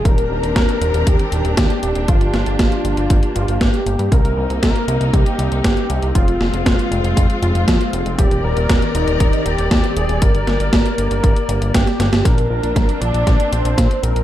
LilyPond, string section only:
\new Staff \with { instrumentName = "String section" } { \time 4/4 \key c \minor \tempo 4 = 118 << { <ees c' d' bes'>1 | bes1 | <bes ees'>1 | <aes f'>1 |
<ees bes' d''>1 | bes1 | <bes d'>1 | } \\ { g'1~ | g'1 | c'1~ | c'1 |
g'1~ | g'1 | c'1 | } >> }